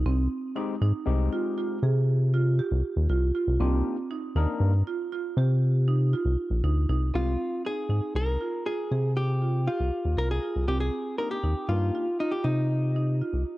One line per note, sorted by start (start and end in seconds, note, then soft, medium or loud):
0.05 0.28 C2 loud
0.05 0.40 C4 medium
0.56 0.74 G#3 medium
0.56 0.74 C4 medium
0.56 0.73 D#4 medium
0.56 0.74 D#4 medium
0.56 0.75 G4 medium
0.81 0.93 G#2 medium
0.81 1.16 D#4 medium
1.06 1.29 C2 loud
1.06 1.77 G#3 medium
1.06 1.77 C4 medium
1.06 1.78 D#4 medium
1.06 1.78 G4 medium
1.33 1.50 F4 medium
1.58 1.75 F4 medium
1.83 2.61 C3 loud
1.83 2.17 G#4 medium
2.34 2.51 F4 medium
2.59 2.93 G4 medium
2.71 2.83 C2 medium
2.96 3.08 D#2 medium
3.09 3.32 C2 medium
3.09 3.27 F4 medium
3.35 3.52 F4 medium
3.47 3.59 C2 medium
3.60 3.82 C2 loud
3.60 3.95 A#3 medium
3.60 3.95 C4 medium
3.60 3.95 D4 medium
3.60 3.96 D#4 medium
3.60 3.96 G4 medium
4.11 4.28 D#4 medium
4.35 4.47 D#2 medium
4.35 4.71 A#3 medium
4.35 4.72 D4 medium
4.35 4.70 D#4 medium
4.35 4.72 D#4 medium
4.35 4.72 A#4 medium
4.60 4.83 G2 loud
4.87 5.04 F4 medium
5.12 5.29 F4 medium
5.37 6.14 C3 loud
5.37 5.72 G4 medium
5.88 6.05 D#4 medium
6.13 6.47 F4 medium
6.25 6.36 C2 medium
6.50 6.62 A#1 medium
6.63 6.86 D2 medium
6.63 6.81 D#4 medium
6.89 7.12 C2 medium
6.89 7.06 D#4 medium
7.13 7.36 C2 loud
7.13 7.32 G#3 soft
7.13 7.32 C4 soft
7.13 7.48 C4 medium
7.13 7.32 D#4 soft
7.13 7.62 F4 medium
7.13 7.32 G4 medium
7.65 7.82 D#4 medium
7.65 8.16 G#4 medium
7.89 8.01 G#2 medium
7.89 8.24 D#4 medium
8.15 8.37 C2 loud
8.15 8.66 A#4 medium
8.41 8.58 F4 medium
8.66 8.83 F4 medium
8.66 9.16 G#4 medium
8.91 9.69 C3 medium
8.91 9.26 G#4 medium
9.17 9.69 G4 medium
9.42 9.59 F4 medium
9.68 10.19 F4 medium
9.68 10.01 G4 medium
9.80 9.91 C2 medium
10.05 10.16 D#2 medium
10.17 10.39 C2 medium
10.17 10.35 F4 medium
10.17 10.30 A#4 medium
10.31 10.68 G#4 medium
10.43 10.60 F4 medium
10.56 10.67 C2 medium
10.68 10.90 C2 loud
10.68 11.02 C4 medium
10.68 10.80 G4 medium
10.80 11.16 G#4 medium
11.18 11.36 A#3 soft
11.18 11.36 D4 soft
11.18 11.36 D#4 medium
11.18 11.37 D#4 soft
11.18 11.37 G4 medium
11.18 11.31 A#4 medium
11.31 11.70 G4 medium
11.43 11.55 D#2 medium
11.43 11.78 D#4 medium
11.68 11.91 G2 loud
11.68 12.05 A#3 medium
11.68 12.05 D4 medium
11.68 12.05 D#4 medium
11.68 12.20 F4 medium
11.68 12.05 G4 medium
11.95 12.12 F4 medium
12.20 12.32 D#4 medium
12.20 12.37 F4 medium
12.31 12.45 G4 medium
12.44 13.22 C3 medium
12.44 13.42 D#4 medium
12.44 12.79 G4 medium
12.96 13.13 D#4 medium
13.21 13.55 F4 medium
13.33 13.44 C2 medium